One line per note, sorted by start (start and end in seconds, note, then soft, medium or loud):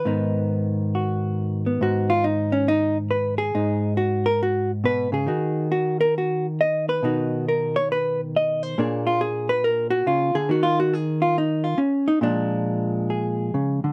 0.00 0.93 B4 medium
0.05 1.81 G#2 medium
0.05 3.54 D#3 soft
0.05 1.66 B3 soft
0.05 1.82 D#4 soft
0.95 1.83 F#4 soft
1.66 2.13 B3 soft
1.81 3.53 G#2 medium
1.81 2.11 F#4 medium
2.10 2.24 F4 medium
2.24 2.53 D#4 medium
2.52 2.67 C#4 medium
2.68 2.97 D#4 loud
3.11 3.38 B4 medium
3.38 3.96 G#4 medium
3.55 5.26 G#2 medium
3.55 3.97 D#4 medium
3.97 4.26 F#4 medium
4.26 4.40 A#4 loud
4.43 4.71 F#4 medium
4.84 5.12 B2 medium
4.84 5.13 B4 loud
5.12 5.27 C#3 medium
5.12 5.71 G#4 medium
5.26 7.02 D#3 medium
5.26 7.01 D#4 soft
5.26 5.71 F#4 soft
5.72 6.00 F#4 medium
6.01 6.15 A#4 loud
6.18 6.46 F#4 medium
6.61 6.89 D#5 medium
6.89 7.47 B4 medium
7.03 8.75 B2 medium
7.03 8.78 D#3 soft
7.03 8.76 D#4 medium
7.03 7.48 F#4 soft
7.48 7.77 A#4 medium
7.76 7.90 C#5 loud
7.92 8.20 B4 medium
8.36 8.63 D#5 medium
8.63 8.80 C5 medium
8.78 10.06 A#2 medium
8.78 10.49 A#3 medium
8.78 10.49 D4 medium
8.78 9.20 G#4 soft
8.78 9.06 C#5 loud
9.07 9.21 F4 medium
9.21 9.49 G#4 medium
9.49 9.63 B4 loud
9.64 9.90 A#4 medium
9.90 10.06 F#4 loud
10.06 10.34 C#3 medium
10.06 10.36 F4 medium
10.35 10.49 D3 medium
10.35 10.50 G#4 loud
10.49 11.77 D#3 medium
10.49 10.65 F#4 medium
10.63 10.78 F4 loud
10.80 10.94 F#4 medium
10.93 11.22 G#4 medium
11.22 11.36 F4 medium
11.38 11.66 D#4 medium
11.64 11.79 F4 loud
11.78 12.08 C#4 medium
12.08 12.22 D#4 loud
12.21 13.54 A#2 medium
12.21 13.93 F3 medium
12.21 13.93 G#3 medium
12.21 13.10 D4 medium
13.10 13.93 G#4 medium
13.54 13.84 C#3 medium
13.84 13.93 D3 medium